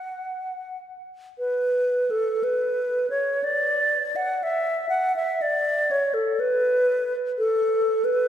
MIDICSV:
0, 0, Header, 1, 2, 480
1, 0, Start_track
1, 0, Tempo, 1271186
1, 527, Tempo, 1052632
1, 528, Time_signature, 4, 2, 24, 8
1, 1007, Tempo, 990099
1, 3834, End_track
2, 0, Start_track
2, 0, Title_t, "Alto flute"
2, 0, Program_c, 0, 73
2, 0, Note_on_c, 0, 78, 71
2, 288, Note_off_c, 0, 78, 0
2, 523, Note_on_c, 0, 71, 69
2, 849, Note_on_c, 0, 69, 65
2, 856, Note_off_c, 0, 71, 0
2, 1001, Note_on_c, 0, 71, 68
2, 1007, Note_off_c, 0, 69, 0
2, 1320, Note_off_c, 0, 71, 0
2, 1323, Note_on_c, 0, 73, 65
2, 1486, Note_on_c, 0, 74, 68
2, 1493, Note_off_c, 0, 73, 0
2, 1836, Note_on_c, 0, 78, 71
2, 1843, Note_off_c, 0, 74, 0
2, 1968, Note_on_c, 0, 76, 76
2, 1975, Note_off_c, 0, 78, 0
2, 2188, Note_off_c, 0, 76, 0
2, 2191, Note_on_c, 0, 78, 71
2, 2315, Note_off_c, 0, 78, 0
2, 2321, Note_on_c, 0, 76, 69
2, 2445, Note_on_c, 0, 74, 74
2, 2453, Note_off_c, 0, 76, 0
2, 2685, Note_on_c, 0, 73, 67
2, 2692, Note_off_c, 0, 74, 0
2, 2796, Note_on_c, 0, 69, 67
2, 2803, Note_off_c, 0, 73, 0
2, 2921, Note_on_c, 0, 71, 78
2, 2928, Note_off_c, 0, 69, 0
2, 3288, Note_off_c, 0, 71, 0
2, 3399, Note_on_c, 0, 69, 63
2, 3719, Note_on_c, 0, 71, 69
2, 3727, Note_off_c, 0, 69, 0
2, 3834, Note_off_c, 0, 71, 0
2, 3834, End_track
0, 0, End_of_file